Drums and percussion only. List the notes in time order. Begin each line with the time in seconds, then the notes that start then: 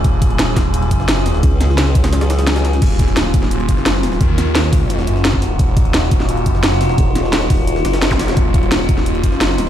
0.04 kick, closed hi-hat
0.22 kick, closed hi-hat
0.30 closed hi-hat
0.39 snare, closed hi-hat
0.56 kick, snare, closed hi-hat
0.74 closed hi-hat
0.82 closed hi-hat
0.91 kick, closed hi-hat
1.00 snare
1.08 snare, closed hi-hat
1.17 snare
1.26 snare, closed hi-hat, open hi-hat
1.35 snare
1.43 kick, closed hi-hat
1.61 snare, closed hi-hat
1.69 snare
1.78 snare, closed hi-hat
1.95 kick, closed hi-hat
2.04 snare, closed hi-hat
2.13 snare, closed hi-hat
2.21 snare, closed hi-hat
2.30 snare, closed hi-hat
2.39 snare, closed hi-hat
2.47 snare, closed hi-hat
2.56 snare, closed hi-hat
2.65 snare, open hi-hat
2.73 snare, closed hi-hat
2.82 kick, closed hi-hat, crash
2.99 kick, closed hi-hat
3.08 closed hi-hat
3.17 snare, closed hi-hat
3.34 kick, closed hi-hat
3.43 snare
3.51 closed hi-hat
3.60 closed hi-hat
3.69 kick, closed hi-hat
3.77 snare
3.86 snare, closed hi-hat
3.95 snare
4.03 snare, closed hi-hat, open hi-hat
4.12 snare
4.21 kick, closed hi-hat
4.38 snare, closed hi-hat
4.55 snare, closed hi-hat
4.73 kick, snare, closed hi-hat, open hi-hat
4.90 closed hi-hat
4.99 snare
5.07 closed hi-hat
5.16 snare
5.25 snare, closed hi-hat
5.33 kick, snare
5.42 snare, closed hi-hat, open hi-hat
5.59 kick, closed hi-hat
5.77 kick, closed hi-hat
5.85 closed hi-hat
5.94 snare, closed hi-hat
6.11 kick, closed hi-hat
6.20 snare
6.29 closed hi-hat
6.37 closed hi-hat
6.46 kick, closed hi-hat
6.55 snare
6.63 snare, closed hi-hat
6.72 snare
6.81 snare, closed hi-hat, open hi-hat
6.89 snare
6.98 kick, closed hi-hat
7.15 snare, closed hi-hat
7.24 snare
7.33 snare, closed hi-hat
7.50 kick, snare, closed hi-hat, open hi-hat
7.67 closed hi-hat
7.76 snare
7.85 snare, closed hi-hat
7.93 snare, closed hi-hat
8.02 snare, closed hi-hat
8.11 kick, snare, closed hi-hat
8.19 snare, closed hi-hat, open hi-hat
8.28 snare, closed hi-hat
8.37 kick, closed hi-hat
8.54 kick, closed hi-hat
8.63 closed hi-hat
8.72 snare, closed hi-hat
8.89 kick, closed hi-hat
8.98 snare
9.06 closed hi-hat
9.15 closed hi-hat
9.24 kick, closed hi-hat
9.32 snare
9.41 snare, closed hi-hat
9.50 snare
9.58 snare, closed hi-hat, open hi-hat